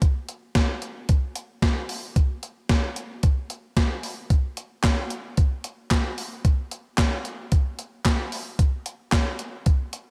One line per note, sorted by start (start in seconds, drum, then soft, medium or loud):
0.02 kick loud
0.02 closed hi-hat medium
0.29 closed hi-hat medium
0.55 kick loud
0.55 snare loud
0.55 closed hi-hat medium
0.82 closed hi-hat medium
1.09 kick loud
1.09 closed hi-hat medium
1.36 closed hi-hat medium
1.62 kick loud
1.62 snare loud
1.62 closed hi-hat medium
1.89 open hi-hat medium
2.16 kick loud
2.16 closed hi-hat medium
2.43 closed hi-hat medium
2.69 kick loud
2.69 snare loud
2.69 closed hi-hat medium
2.96 closed hi-hat medium
3.23 kick loud
3.23 closed hi-hat medium
3.50 closed hi-hat medium
3.77 kick loud
3.77 snare loud
3.77 closed hi-hat medium
4.03 open hi-hat medium
4.30 kick loud
4.30 closed hi-hat medium
4.57 closed hi-hat medium
4.84 kick loud
4.84 snare loud
4.84 clap medium
4.84 closed hi-hat medium
5.10 closed hi-hat medium
5.37 kick loud
5.37 closed hi-hat medium
5.64 closed hi-hat medium
5.91 kick loud
5.91 snare loud
5.91 clap medium
5.91 closed hi-hat medium
6.18 open hi-hat medium
6.45 kick loud
6.45 closed hi-hat medium
6.71 closed hi-hat medium
6.98 kick loud
6.98 snare loud
6.98 clap medium
6.98 closed hi-hat medium
7.25 closed hi-hat medium
7.52 kick loud
7.52 closed hi-hat medium
7.79 closed hi-hat medium
8.05 kick loud
8.05 snare loud
8.05 clap medium
8.05 closed hi-hat medium
8.32 open hi-hat medium
8.59 kick loud
8.59 closed hi-hat medium
8.86 closed hi-hat medium
9.12 kick loud
9.12 snare loud
9.12 clap medium
9.12 closed hi-hat medium
9.39 closed hi-hat medium
9.66 kick loud
9.66 closed hi-hat medium
9.93 closed hi-hat medium